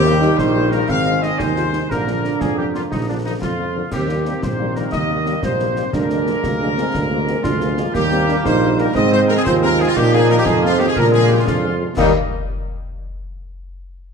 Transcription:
Already playing: tuba D#2, trombone section D#3 G3, trumpet section G4, woodwind section G4
0.05 french horn section G3 A#3 D#4, euphonium A#3, snare
0.21 french horn section G3 A#3 D#4, euphonium D#4, snare
0.38 tuba A#1, trumpet section C5, woodwind section C5, concert bass drum, snare
0.56 french horn section G3 A#3 D#4
0.71 french horn section G3 A#3 D#4, trumpet section A#4, woodwind section A#4, snare
0.88 tuba G#1, trombone section G#3, euphonium C4, woodwind section F5, trumpet section F5, concert bass drum, snare
1.06 french horn section D#3 G#3 D#4
1.21 french horn section D#3 G#3 D#4, woodwind section D#5, trumpet section D#5, snare
1.39 tuba D#2, euphonium D#4, woodwind section C5, trumpet section C5, concert bass drum, snare
1.56 french horn section D#3 G#3 D#4, euphonium F4, snare
1.73 french horn section D#3 G#3 D#4, euphonium D#4, snare
1.90 tuba A#1, trombone section D3 A#3, euphonium D4, trumpet section A#4, woodwind section A#4, concert bass drum, snare, crash
2.07 french horn section D3 F3 A#3, snare
2.24 french horn section D3 F3 A#3, snare
2.40 tuba F2, trumpet section G#4, woodwind section G#4, concert bass drum, snare
2.57 french horn section D3 F3 A#3, trumpet section G4, woodwind section G4
2.74 french horn section D3 F3 A#3, woodwind section F4, trumpet section F4, snare
2.91 tuba A#1, trumpet section D#4, woodwind section D#4, concert bass drum, snare
3.08 french horn section D3 F3 A#3, trumpet section D4, woodwind section D4
3.25 french horn section D3 F3 A#3, trumpet section D#4, woodwind section D#4
3.41 tuba F2, trumpet section F4, woodwind section F4, concert bass drum, snare
3.58 french horn section D3 F3 A#3
3.75 french horn section D3 F3 A#3
3.91 tuba D#2, trombone section D#3 A#3, euphonium C4, trumpet section G4, woodwind section G4, concert bass drum, snare, crash
4.08 french horn section D#3 G3 A#3, euphonium A#3, snare
4.25 french horn section D#3 G3 A#3, euphonium C4, snare
4.42 tuba A#1, trumpet section C5, woodwind section C5, concert bass drum, snare
4.59 french horn section D#3 G3 A#3
4.76 french horn section D#3 G3 A#3, woodwind section A#4, trumpet section A#4, snare
4.92 tuba D#2, euphonium A#3, woodwind section D#5, trumpet section D#5, concert bass drum, snare
5.10 french horn section D#3 G3 A#3
5.26 french horn section D#3 G3 A#3, snare
5.43 tuba A#1, euphonium G3, woodwind section C5, trumpet section C5, concert bass drum, snare
5.59 french horn section D#3 G3 A#3, euphonium A#3, snare
5.76 french horn section D#3 G3 A#3, euphonium C4, snare
5.93 tuba D2, trombone section G#3 A#3, euphonium D4, woodwind section A#4, trumpet section A#4, concert bass drum, snare, crash
6.10 french horn section F3 G#3 A#3, snare
6.26 french horn section F3 G#3 A#3, snare
6.43 tuba D2, euphonium A#3, concert bass drum, snare
6.61 french horn section F3 G#3 A#3, euphonium D4
6.77 french horn section F3 G#3 A#3, euphonium C4, snare
6.94 tuba D2, euphonium D4, concert bass drum, snare
7.12 french horn section F3 G#3 A#3, euphonium A#3
7.28 french horn section F3 G#3 A#3, euphonium C4, snare
7.43 tuba D2, euphonium D4, woodwind section F4, trumpet section F4, concert bass drum, snare
7.60 french horn section F3 G#3 A#3, euphonium A#3, snare
7.77 french horn section F3 G#3 A#3, euphonium G#3, snare
7.94 tuba D#2, trombone section G3 A#3, euphonium A#3, woodwind section G4, trumpet section G4, concert bass drum, snare, crash
8.11 french horn section D#3 G3 A#3, euphonium C4, snare
8.28 french horn section D#3 G3 A#3, euphonium D4, snare
8.44 tuba A#1, euphonium D#4, woodwind section C5, trumpet section C5, concert bass drum, snare
8.62 french horn section D#3 G3 A#3
8.78 french horn section D#3 G3 A#3, trumpet section A#4, woodwind section A#4, snare
8.95 tuba G#2, trombone section G#3 C4, euphonium C4, trumpet section D#5, woodwind section D#5, concert bass drum, snare
9.12 french horn section D#3 G#3 C4, trumpet section C5, woodwind section C5
9.28 french horn section D#3 G#3 C4, trumpet section A#4, woodwind section A#4, snare
9.36 trumpet section G#4, woodwind section G#4
9.45 tuba D#2, euphonium F4, trumpet section C5, woodwind section C5, concert bass drum, snare
9.62 french horn section D#3 G#3 C4, trumpet section A#4, woodwind section A#4, snare
9.80 french horn section D#3 G#3 C4, trumpet section G#4, woodwind section G#4, snare
9.87 trumpet section F4, woodwind section F4
9.96 tuba A#2, trombone section F3 D#4, euphonium D#4, trumpet section G4, woodwind section G4, concert bass drum, snare, crash
10.13 french horn section D#3 F3 A#3, trumpet section G#4, woodwind section G#4, snare
10.30 french horn section D#3 F3 A#3, trumpet section A#4, woodwind section A#4, snare
10.38 woodwind section G4, trumpet section G4
10.45 tuba F2, euphonium C4, woodwind section G#4, trumpet section G#4, concert bass drum, snare
10.63 french horn section D#3 F3 A#3, woodwind section F4, trumpet section F4
10.78 french horn section D#3 F3 A#3, woodwind section G4, trumpet section G4, snare
10.87 woodwind section G#4, trumpet section G#4
10.96 tuba A#2, trombone section G#3 D4, euphonium A#3, woodwind section A#4, trumpet section A#4, concert bass drum, snare
11.12 french horn section D3 F3 G#3, woodwind section G#4, trumpet section G#4
11.29 french horn section D3 F3 G#3, woodwind section G4, trumpet section G4
11.38 woodwind section F4, trumpet section F4
11.47 tuba F2, euphonium D4, trumpet section F4, woodwind section F4, concert bass drum, snare
11.63 french horn section D3 F3 G#3
11.81 french horn section D3 F3 G#3
11.97 tuba D#2, french horn section G3 A#3, trombone section G3 D#4, trumpet section D#4, woodwind section D#5, concert bass drum, snare, crash

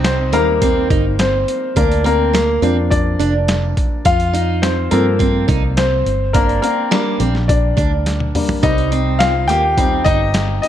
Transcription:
Already playing: fingered electric bass C2, grand piano G3 C4 D#4 D#5, steel-string acoustic guitar C4
0.04 grand piano C4 C5, snare, closed hi-hat
0.32 fingered electric bass D#2, grand piano G3 A#3 C4 D#4 A#4, steel-string acoustic guitar A#3, closed hi-hat
0.62 steel-string acoustic guitar C4, kick, closed hi-hat
0.90 fingered electric bass G1, steel-string acoustic guitar D#4, kick, closed hi-hat
1.19 grand piano C4 C5, snare, closed hi-hat
1.48 closed hi-hat
1.76 fingered electric bass D2, grand piano A#3 A#4, steel-string acoustic guitar D4, kick, closed hi-hat
1.91 closed hi-hat
2.04 grand piano A#3 A#4, steel-string acoustic guitar C4, closed hi-hat
2.33 steel-string acoustic guitar A#3, snare, closed hi-hat
2.62 fingered electric bass F2, grand piano F3 A#3 D4, steel-string acoustic guitar C4, closed hi-hat
2.90 grand piano D4 D5, kick, closed hi-hat
3.19 fingered electric bass F1, steel-string acoustic guitar D4, closed hi-hat
3.48 snare, closed hi-hat
3.77 kick, closed hi-hat
4.05 fingered electric bass F2, steel-string acoustic guitar F4, grand piano F4 F5, kick, closed hi-hat
4.20 closed hi-hat
4.33 steel-string acoustic guitar D#4, closed hi-hat
4.62 grand piano C4 C5, snare, closed hi-hat
4.91 fingered electric bass G2, grand piano F3 A#3 C4 A4 A#4, steel-string acoustic guitar C4, closed hi-hat
5.19 steel-string acoustic guitar C4, kick, closed hi-hat
5.48 fingered electric bass C2, steel-string acoustic guitar D#4, kick, closed hi-hat
5.77 grand piano C4 C5, snare, closed hi-hat
6.06 fingered electric bass G1, closed hi-hat
6.33 grand piano A#3 A#4, steel-string acoustic guitar D4, kick, closed hi-hat
6.49 closed hi-hat
6.62 grand piano A#3 A#4, steel-string acoustic guitar C4, closed hi-hat
6.91 grand piano G3 A#3 D4, steel-string acoustic guitar A#3, snare, closed hi-hat
7.20 fingered electric bass A#1, steel-string acoustic guitar C4, closed hi-hat
7.35 snare
7.48 grand piano D4 D5, kick, closed hi-hat
7.77 fingered electric bass D2, steel-string acoustic guitar D4, kick, closed hi-hat
8.06 snare, closed hi-hat
8.20 high tom
8.35 grand piano G3 A#3 D4, mid tom, open hi-hat
8.49 floor tom
8.63 fingered electric bass C2, grand piano G3 C4 D#4 D#5, steel-string acoustic guitar D#4, kick, closed hi-hat
8.78 closed hi-hat
8.92 steel-string acoustic guitar C4, closed hi-hat
9.19 grand piano F4 F5, snare, closed hi-hat
9.48 fingered electric bass D#2, steel-string acoustic guitar A#3, grand piano G4 G5, closed hi-hat
9.77 grand piano G3 C4 D#4, steel-string acoustic guitar C4, kick, closed hi-hat
10.04 fingered electric bass G1, steel-string acoustic guitar D#4, grand piano D#4 D#5, kick, closed hi-hat
10.34 snare, closed hi-hat
10.62 grand piano D#4 D#5, closed hi-hat

